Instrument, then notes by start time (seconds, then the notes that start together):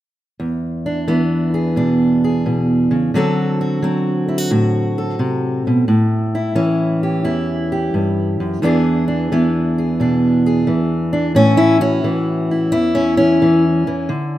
steel-string acoustic guitar
0.40 E2
0.86 D4
1.08 E3 B3
1.54 G#4
1.76 B2 D4
2.24 G#4
2.46 B2
2.91 C#3
3.14 D3 F#3 C4 F#4 A4
3.61 F#4
3.82 F#3 C4
4.28 E4
4.38 F#4
4.51 A2 F#4
4.98 A4
5.19 C3
5.67 B2
5.88 A2
6.35 E4
6.55 E3 C#4
7.03 G4
7.24 E2 E4
7.72 G4
7.94 G2
8.40 F#2
8.62 E2 E3 B3 D4 G#4
9.08 D4
9.32 E3 B3
9.78 G#4
10.00 B2 D4
10.46 G#4
10.67 E3
11.13 D4
11.35 A2 C#4
11.57 E4
11.81 C#4 F#4
12.04 E3
12.51 E4
12.72 E2 E4
12.95 C#4
13.17 E3 C#4
13.42 E3
13.87 E3
14.09 D3